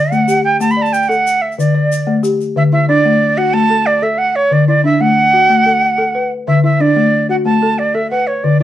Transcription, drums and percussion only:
0.12 shaker
0.28 shaker
0.61 shaker
0.70 shaker
0.86 shaker
0.94 shaker
1.02 shaker
1.11 shaker
1.27 shaker
1.52 shaker
1.60 shaker
1.92 shaker
2.24 shaker
2.41 shaker

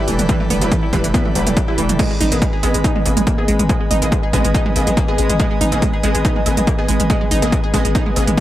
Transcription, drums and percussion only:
0.08 open hi-hat
0.19 closed hi-hat, mid tom
0.29 kick, closed hi-hat
0.40 mid tom
0.50 mid tom, open hi-hat
0.61 closed hi-hat
0.72 kick, closed hi-hat
0.93 kick, open hi-hat
1.04 closed hi-hat
1.14 kick, closed hi-hat
1.25 mid tom
1.35 open hi-hat
1.47 closed hi-hat, mid tom
1.57 kick, closed hi-hat
1.78 open hi-hat
1.89 closed hi-hat, mid tom
1.99 kick, closed hi-hat, crash
2.21 mid tom, open hi-hat
2.32 closed hi-hat
2.42 kick, closed hi-hat
2.63 open hi-hat
2.74 closed hi-hat
2.84 kick, closed hi-hat
2.96 mid tom
3.06 open hi-hat
3.17 closed hi-hat, mid tom
3.27 kick, closed hi-hat
3.48 open hi-hat
3.59 closed hi-hat, mid tom
3.69 kick, closed hi-hat
3.91 mid tom, open hi-hat
4.02 closed hi-hat
4.12 kick, closed hi-hat
4.33 kick, open hi-hat
4.45 closed hi-hat
4.54 kick, closed hi-hat
4.66 mid tom
4.76 open hi-hat
4.87 closed hi-hat, mid tom
4.97 kick, closed hi-hat
5.18 open hi-hat
5.30 closed hi-hat, mid tom
5.40 kick, closed hi-hat
5.61 mid tom, open hi-hat
5.72 closed hi-hat
5.82 kick, closed hi-hat
6.03 open hi-hat
6.15 closed hi-hat
6.25 kick, closed hi-hat
6.36 mid tom
6.46 open hi-hat
6.57 closed hi-hat, mid tom
6.67 kick, closed hi-hat
6.88 open hi-hat
7.00 closed hi-hat, mid tom
7.10 kick, closed hi-hat
7.21 mid tom
7.31 mid tom, open hi-hat
7.42 closed hi-hat
7.52 kick, closed hi-hat
7.74 kick, open hi-hat
7.85 closed hi-hat
7.95 kick, closed hi-hat
8.06 mid tom
8.16 open hi-hat
8.27 closed hi-hat, mid tom

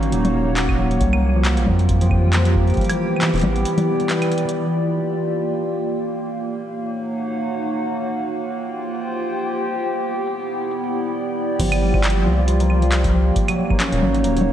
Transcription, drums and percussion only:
0.03 closed hi-hat
0.12 closed hi-hat
0.25 closed hi-hat, low conga
0.57 clap, closed hi-hat
0.69 kick, claves
0.91 closed hi-hat
1.01 kick, closed hi-hat
1.13 claves
1.45 clap, closed hi-hat
1.57 closed hi-hat
1.67 kick, low conga
1.79 closed hi-hat
1.89 kick, closed hi-hat
2.01 closed hi-hat
2.11 kick, claves
2.33 clap, closed hi-hat
2.45 closed hi-hat
2.55 kick
2.67 closed hi-hat
2.70 closed hi-hat
2.74 kick, closed hi-hat
2.77 closed hi-hat
2.81 closed hi-hat
2.85 closed hi-hat
2.90 closed hi-hat, claves
3.16 claves
3.21 clap, closed hi-hat
3.34 closed hi-hat
3.36 closed hi-hat
3.38 closed hi-hat
3.39 closed hi-hat
3.41 closed hi-hat, low conga
3.56 closed hi-hat
3.65 closed hi-hat
3.78 closed hi-hat, low conga
4.00 closed hi-hat
4.10 clap, closed hi-hat
4.22 closed hi-hat, claves
4.32 closed hi-hat
4.38 closed hi-hat
4.49 closed hi-hat
4.54 closed hi-hat
4.66 closed hi-hat
4.98 closed hi-hat
5.10 closed hi-hat
5.32 closed hi-hat
5.42 closed hi-hat
5.54 closed hi-hat
5.86 closed hi-hat
6.20 closed hi-hat
6.30 closed hi-hat
6.42 closed hi-hat
6.86 closed hi-hat
7.09 closed hi-hat
7.18 closed hi-hat
7.31 closed hi-hat
7.62 closed hi-hat
7.75 closed hi-hat
7.97 closed hi-hat
8.06 closed hi-hat
8.19 closed hi-hat
8.51 closed hi-hat
8.63 closed hi-hat
8.85 closed hi-hat
8.95 closed hi-hat
9.01 closed hi-hat
9.39 closed hi-hat
9.51 closed hi-hat
9.73 closed hi-hat
9.83 closed hi-hat
9.95 closed hi-hat
9.98 closed hi-hat
10.00 closed hi-hat
10.03 closed hi-hat
10.05 closed hi-hat
10.08 closed hi-hat
10.11 closed hi-hat
10.14 closed hi-hat
10.27 closed hi-hat
10.39 closed hi-hat
10.62 closed hi-hat
10.71 closed hi-hat
10.84 closed hi-hat
11.06 closed hi-hat
11.08 closed hi-hat
11.12 closed hi-hat
11.60 kick, closed hi-hat, crash
11.72 closed hi-hat, claves
11.94 kick, claves
12.04 clap, closed hi-hat
12.10 closed hi-hat
12.48 closed hi-hat
12.60 closed hi-hat
12.70 claves
12.82 closed hi-hat
12.92 clap, closed hi-hat
13.04 kick, closed hi-hat
13.36 kick, closed hi-hat
13.48 closed hi-hat, claves
13.70 kick, claves
13.80 clap, closed hi-hat
13.92 closed hi-hat
14.02 low conga
14.14 closed hi-hat
14.24 closed hi-hat
14.37 closed hi-hat
14.41 low conga

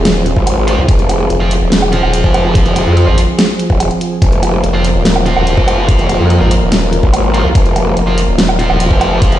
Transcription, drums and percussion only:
0.05 snare, closed hi-hat
0.26 closed hi-hat
0.36 kick
0.47 closed hi-hat, low woodblock
0.68 closed hi-hat
0.88 kick, closed hi-hat
0.99 closed hi-hat
1.09 closed hi-hat, low woodblock
1.30 closed hi-hat
1.51 open hi-hat
1.72 snare, closed hi-hat
1.82 low woodblock
1.93 closed hi-hat
2.03 low woodblock
2.14 closed hi-hat
2.24 kick
2.34 closed hi-hat, low woodblock
2.55 kick, closed hi-hat
2.66 closed hi-hat
2.76 closed hi-hat, low woodblock
2.97 closed hi-hat
3.18 open hi-hat
3.39 snare, closed hi-hat
3.59 closed hi-hat
3.70 kick
3.80 closed hi-hat, low woodblock
3.91 closed hi-hat
4.01 closed hi-hat
4.22 kick, closed hi-hat
4.33 closed hi-hat
4.43 closed hi-hat, low woodblock
4.64 closed hi-hat
4.84 open hi-hat
5.05 snare, closed hi-hat
5.16 low woodblock
5.26 closed hi-hat
5.37 low woodblock
5.47 closed hi-hat
5.57 kick
5.68 closed hi-hat, low woodblock
5.89 kick, closed hi-hat
5.99 closed hi-hat
6.09 closed hi-hat, low woodblock
6.30 closed hi-hat
6.51 open hi-hat
6.72 snare, closed hi-hat
6.93 closed hi-hat
7.03 kick
7.14 closed hi-hat, low woodblock
7.34 closed hi-hat
7.55 kick, closed hi-hat
7.66 closed hi-hat
7.76 closed hi-hat, low woodblock
7.97 closed hi-hat
8.18 open hi-hat
8.38 snare, closed hi-hat
8.49 low woodblock
8.59 closed hi-hat
8.70 low woodblock
8.80 closed hi-hat
8.91 kick
9.01 closed hi-hat, low woodblock
9.22 kick, closed hi-hat
9.32 closed hi-hat

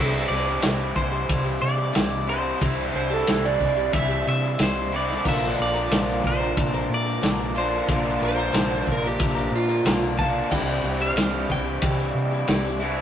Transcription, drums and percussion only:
0.62 snare, ride bell
0.96 kick
1.29 kick, ride bell
1.95 snare, ride bell
2.61 kick, ride bell
3.27 snare, ride bell
3.44 snare
3.61 kick
3.93 kick, ride bell
4.59 snare, ride bell
5.10 snare
5.25 kick, crash
5.91 snare, ride bell
6.24 kick
6.57 kick, ride bell
7.23 snare, ride bell
7.88 kick, ride bell
8.54 snare, ride bell
8.87 kick
9.20 kick, ride bell
9.86 snare, ride bell
10.19 kick
10.51 kick, crash
11.17 snare, ride bell
11.50 kick
11.82 kick, ride bell
12.48 snare, ride bell

